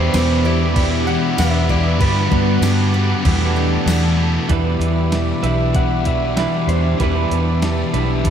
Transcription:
Already playing: E2 B2 E3 B3 D4 E4 G4 B4 C5 E5 B5 D6
0.13 E2 B2 E3 B3 D4 E4 G4, snare, tambourine, crash
0.44 B2 E3 B3 E4 G4 D5
0.74 E2 B2 E3 B3 E4 G4, kick, crash
1.06 B2 E3 B3 D4 E4 G4 F#5
1.36 E2 B2 E3 B3 E4 G4 E5, snare, tambourine, crash
1.68 B2 E3 B3 E4 G4 D5, kick
1.99 G2 D3 G3 B3 D4 F#4 G4 B4 F#5 D6, kick, crash
2.30 G2 D3 G3 B3 D4 G4, kick
2.61 G2 D3 G3 B3 D4 G4, snare, tambourine, crash
2.93 D3 G3 B3 D4 G4
3.23 E2 B2 E3 G3 A3 B3 D4 E4 G4 B4 A5, kick, crash
3.55 B2 E3 B3 D4 E4 G4
3.86 E2 B2 E3 A3 B3 E4 G4, snare, tambourine, crash
4.16 E3 B3 E4 G4
4.20 B2
4.49 E2 B2 E3 G3 B3 D4 E4 G4 B4 E5 B5 D6, kick, closed hi-hat
4.79 E2 B2 E3 B3, closed hi-hat
5.11 E2 B2 E3 G4, snare, closed hi-hat
5.42 B1 B2 E3 G3 D4 E4 B4 E5, closed hi-hat
5.73 E2 B2 E3 F#5, kick, closed hi-hat
6.05 B2 E3 E5, kick, closed hi-hat
6.36 E2 B2 E3 G3 D4 E4 B4, snare, closed hi-hat
6.67 E2 B2 E3 D4 C5, closed hi-hat
6.98 E2 B2 E3 G3 B3 D4 B4 A5, kick, closed hi-hat
7.02 E4 B4
7.29 E2 B2 E3 B3, closed hi-hat
7.61 E2 B2 E3 G4, snare, closed hi-hat
7.93 B1 B2 E3 G3 D4 E4 B4, closed hi-hat
7.97 E3
8.24 E2 B2 E3 B3, kick, closed hi-hat

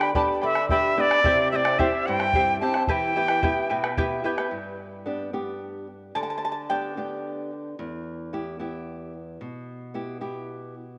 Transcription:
Already playing: D3 B3 D4 G4 G5
0.01 B4 D5 B5, bombo rim
0.15 B3 D4 G4 B4 D5 G5 A5 B5, bombo low
0.28 bombo rim
0.41 D3 B4 D5 E5 G5 B5
0.55 B4 D5 B5, bombo rim
0.69 B3 D4 G4 B4 D5 E5 G5 B5, bombo low
0.97 B3 D4 G4 B4 D5 E5 G5 B5
1.11 B4 D5 B5, bombo rim
1.24 C3 E4 G4 C5 E5 G5, bombo rim, bombo low
1.38 bombo rim
1.52 C4 E4 G4 C5 E5 G5
1.56 D5
1.65 E4 C5 G5, bombo rim
1.79 C4 E4 G4 C5 E5 G5, bombo low
1.92 bombo rim
2.06 G2 E4 C5 E5 G5
2.20 E4 C5 G5, bombo rim
2.33 C4 E4 G4 C5 E5 G5, bombo low
2.60 C4 E4 G4 C5 E5 G5 A5
2.74 E4 C5 G5, bombo rim
2.87 E3 E4 G4 B4 E5 G5 A5, bombo low
3.16 B3 E4 G4 B4 E5 G5
3.28 E4 B4 G5, bombo rim
3.42 B3 E4 G4 B4 E5 G5, bombo low
3.70 B2 E4 B4 E5 G5, bombo rim
3.84 E4 B4 G5, bombo rim
3.97 B3 E4 G4 B4 E5 G5, bombo rim, bombo low
4.24 B3 E4 G4 B4 E5 G5
4.38 E4 B4 G5, bombo rim
4.51 G2
5.06 B3 D4 G4
5.33 B3 D4 G4
6.15 D3 D5 A5
6.23 A5
6.30 A5
6.38 A5
6.45 A5
6.52 A5
6.70 B3 D4 G4 D5 G5
6.97 B3 D4 G4
7.79 E2
8.33 B3 E4 G4
8.59 B3 E4 G4
9.41 B2
9.94 B3 E4 G4
10.21 B3 E4 G4

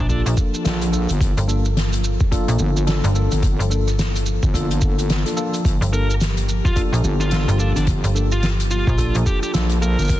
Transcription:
Already playing: F3 A#3 G4
0.00 A#1
0.09 A#3 D4 F4 A4, kick, shaker
0.26 A#1, closed hi-hat, shaker
0.37 kick, shaker
0.54 shaker
0.65 A#1 A#3 D4 F4 A4, snare, closed hi-hat, shaker
0.82 closed hi-hat, shaker
0.92 A#3 D4 F4 A4, shaker
1.09 G1, closed hi-hat, shaker
1.20 G1 A4, kick, closed hi-hat, shaker
1.37 G1, closed hi-hat, shaker
1.48 A#3 D4 F4 A4, shaker
1.65 shaker
1.77 snare, closed hi-hat
1.93 closed hi-hat, shaker
2.04 shaker
2.20 kick, shaker
2.31 A#3 D4 F4 A4, kick, closed hi-hat, shaker
2.48 A#1, closed hi-hat, shaker
2.59 G1, shaker
2.77 shaker
2.87 A#3 D4 F4 A4, snare, closed hi-hat, shaker
3.04 G1, closed hi-hat, shaker
3.15 A#3 D4 F4 A4, shaker
3.31 G1, closed hi-hat, shaker
3.43 kick, closed hi-hat, shaker
3.59 G1, closed hi-hat, shaker
3.70 A#3 D4 F4 A4, shaker
3.88 cross-stick, shaker
3.99 snare, closed hi-hat, shaker
4.16 closed hi-hat, shaker
4.26 shaker
4.43 G1, kick, shaker
4.53 A#3 D4 F4 A4, kick, closed hi-hat, shaker
4.71 closed hi-hat, shaker
4.82 kick, shaker
4.98 closed hi-hat, shaker
5.10 snare, closed hi-hat, shaker
5.26 A#3 D4 F4 A4, closed hi-hat, shaker
5.37 A#3 D4 F4 A4, shaker
5.54 closed hi-hat, shaker
5.65 G1 G4, kick, closed hi-hat, shaker
5.81 G1, closed hi-hat, shaker
5.92 A#3 D4 F4 A4 A#4, shaker
6.11 shaker
6.21 snare, closed hi-hat, shaker
6.37 closed hi-hat, shaker
6.49 shaker
6.65 F4, kick, shaker
6.76 A#3 D4 F4 A4, kick, closed hi-hat, shaker
6.92 A#1, closed hi-hat, shaker
7.04 G1, shaker
7.20 F4, shaker
7.31 A#3 D4 F4 A4, snare, closed hi-hat, shaker
7.48 G1, closed hi-hat, shaker
7.59 A#3 D4 F4 A4, shaker
7.76 G1 D4, closed hi-hat, shaker
7.87 kick, closed hi-hat, shaker
8.04 G1, closed hi-hat, shaker
8.15 A#3 D4 F4 A4, shaker
8.32 F4, shaker
8.43 snare, closed hi-hat, shaker
8.60 closed hi-hat, shaker
8.71 F4, shaker
8.87 A#1, kick, shaker
8.98 A#3 D4 F4 A4, kick, closed hi-hat, shaker
9.15 A#1, closed hi-hat, shaker
9.26 G4, kick, shaker
9.43 G4, shaker
9.53 A#1 A#3 D4 F4 A4, snare, closed hi-hat, shaker
9.69 closed hi-hat, shaker
9.81 A#3 D4 F4 A4 A#4, shaker
9.98 G1, shaker
10.02 shaker
10.04 shaker
10.07 F4, shaker
10.09 G1, kick, closed hi-hat, shaker

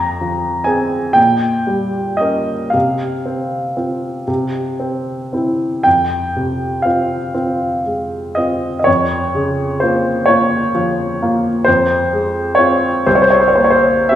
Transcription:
Already playing: F2 A#5
0.21 F3
0.64 C4 G#4 G#5
1.13 A#2 G5
1.67 G3
2.17 C#4 A#4 D#5
2.70 C3 F5
3.26 C4
3.77 C4 F4
4.28 C3
4.80 C4
5.33 C4 E4
5.83 F2 G5
6.36 C3
6.82 C4 F4 F5
7.34 C4 F4
7.86 G#3
8.35 C4 F4 D#5
8.79 D#5
8.84 F2 C#5
9.35 C#3
9.80 A#3 F4 C5
10.26 A#3 F4 C#5
10.75 F3
11.22 A#3 F4
11.65 F2 C5
12.13 G#3
12.55 C4 F4 C#5
13.06 C2 C5
13.15 C#5
13.22 C5
13.30 C#5
13.40 C5
13.48 C#5
13.56 A#3 C5
13.64 C#5
13.70 C5
14.09 C4 G4 E5

